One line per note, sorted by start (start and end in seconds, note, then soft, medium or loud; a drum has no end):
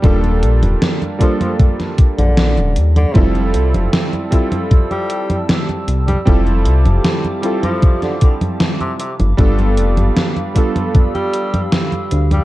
0.02 0.44 D#1 loud
0.02 1.15 G3 loud
0.02 0.17 G3 medium
0.02 1.15 A#3 medium
0.02 1.16 D4 medium
0.02 1.16 F4 medium
0.02 1.17 A4 loud
0.02 kick loud
0.02 closed hi-hat medium
0.02 high conga soft
0.24 closed hi-hat soft
0.24 high conga soft
0.43 0.64 A#1 loud
0.43 closed hi-hat medium
0.63 0.76 D#1 loud
0.63 closed hi-hat medium
0.63 high conga medium
0.82 snare loud
0.82 closed hi-hat medium
0.82 high conga soft
1.02 closed hi-hat soft
1.02 high conga soft
1.19 1.34 F3 medium
1.19 3.10 G3 medium
1.19 3.10 A#3 medium
1.19 3.11 D4 medium
1.19 3.11 F4 medium
1.19 3.11 A4 medium
1.19 kick medium
1.19 closed hi-hat loud
1.41 1.53 F3 medium
1.41 closed hi-hat medium
1.41 high conga medium
1.60 kick loud
1.60 closed hi-hat medium
1.60 high conga soft
1.80 snare soft
1.80 closed hi-hat soft
1.80 high conga soft
1.98 kick loud
1.98 closed hi-hat medium
2.18 2.59 A#1 medium
2.18 2.76 D3 medium
2.18 closed hi-hat medium
2.18 high conga medium
2.37 snare loud
2.37 closed hi-hat medium
2.37 high conga soft
2.57 2.78 D#1 loud
2.57 closed hi-hat soft
2.57 high conga soft
2.76 3.05 D#2 medium
2.76 closed hi-hat medium
2.96 3.23 D3 medium
2.96 closed hi-hat medium
2.96 high conga medium
3.14 3.56 F1 loud
3.14 4.27 G3 loud
3.14 4.27 C4 medium
3.14 4.28 E4 medium
3.14 4.28 F4 medium
3.14 12.44 G4 medium
3.14 4.29 A4 loud
3.14 8.96 A5 medium
3.14 6.24 E6 medium
3.14 kick loud
3.14 closed hi-hat medium
3.14 high conga soft
3.35 closed hi-hat soft
3.35 high conga soft
3.54 3.76 C2 loud
3.54 closed hi-hat medium
3.74 3.88 F1 loud
3.74 closed hi-hat medium
3.74 high conga medium
3.93 snare loud
3.93 closed hi-hat medium
3.93 high conga soft
4.13 closed hi-hat soft
4.13 high conga soft
4.31 6.22 G3 medium
4.31 6.22 C4 medium
4.31 6.22 E4 medium
4.31 6.23 F4 medium
4.31 6.23 A4 medium
4.31 kick medium
4.31 closed hi-hat medium
4.52 closed hi-hat medium
4.52 high conga medium
4.71 kick loud
4.71 closed hi-hat medium
4.71 high conga soft
4.91 5.38 G3 loud
4.91 closed hi-hat soft
4.91 high conga soft
5.10 closed hi-hat medium
5.30 closed hi-hat medium
5.30 high conga medium
5.49 snare loud
5.49 closed hi-hat medium
5.49 high conga soft
5.69 closed hi-hat soft
5.69 high conga soft
5.88 6.17 C2 loud
5.88 closed hi-hat medium
6.07 6.20 G3 medium
6.07 closed hi-hat medium
6.07 high conga medium
6.25 6.68 F1 loud
6.25 7.38 G3 loud
6.25 6.40 G3 medium
6.25 7.39 C4 medium
6.25 7.39 E4 medium
6.25 7.40 F4 medium
6.25 7.40 A4 loud
6.25 8.97 D6 medium
6.25 kick loud
6.25 closed hi-hat soft
6.25 high conga soft
6.47 closed hi-hat soft
6.47 high conga soft
6.66 6.88 C2 loud
6.66 closed hi-hat medium
6.86 7.00 F1 loud
6.86 closed hi-hat soft
6.86 high conga medium
7.05 snare loud
7.05 closed hi-hat soft
7.05 high conga soft
7.24 closed hi-hat soft
7.24 high conga soft
7.42 8.97 G3 medium
7.42 8.97 C4 medium
7.42 8.97 E4 medium
7.42 8.98 F4 medium
7.42 8.98 A4 medium
7.42 closed hi-hat medium
7.63 7.99 F3 medium
7.63 closed hi-hat soft
7.63 high conga medium
7.82 kick loud
7.82 closed hi-hat medium
7.82 high conga soft
8.02 8.15 D3 medium
8.02 snare soft
8.02 closed hi-hat soft
8.02 high conga soft
8.21 8.35 D3 medium
8.21 kick loud
8.21 closed hi-hat medium
8.41 closed hi-hat medium
8.41 high conga medium
8.60 snare loud
8.60 closed hi-hat medium
8.60 high conga soft
8.81 8.93 C3 loud
8.81 closed hi-hat soft
8.81 high conga soft
8.99 9.12 C3 medium
8.99 12.44 F5 medium
8.99 12.44 B5 medium
8.99 10.54 D6 medium
8.99 closed hi-hat medium
9.20 9.34 G1 loud
9.20 closed hi-hat medium
9.20 high conga medium
9.37 9.79 G1 loud
9.37 10.50 G3 loud
9.37 10.51 B3 medium
9.37 10.51 D4 medium
9.37 10.51 F4 medium
9.37 10.52 A4 loud
9.37 kick loud
9.37 closed hi-hat medium
9.37 high conga medium
9.59 closed hi-hat soft
9.59 high conga soft
9.77 9.99 F1 loud
9.77 closed hi-hat medium
9.97 10.11 G1 loud
9.97 closed hi-hat medium
9.97 high conga medium
10.17 snare loud
10.17 closed hi-hat medium
10.17 high conga soft
10.37 closed hi-hat soft
10.37 high conga soft
10.55 12.44 G3 medium
10.55 12.44 B3 medium
10.55 12.44 D4 medium
10.55 12.44 F4 medium
10.55 12.44 A4 medium
10.55 12.44 E6 loud
10.55 kick medium
10.55 closed hi-hat medium
10.76 closed hi-hat medium
10.76 high conga medium
10.95 kick loud
10.95 closed hi-hat medium
10.95 high conga soft
11.14 11.61 G3 loud
11.14 closed hi-hat soft
11.14 high conga soft
11.33 closed hi-hat medium
11.54 closed hi-hat medium
11.54 high conga medium
11.72 snare loud
11.72 closed hi-hat medium
11.72 high conga soft
11.92 closed hi-hat soft
11.92 high conga soft
12.11 12.40 D2 loud
12.11 closed hi-hat medium
12.31 12.44 G3 medium
12.31 closed hi-hat medium
12.31 high conga medium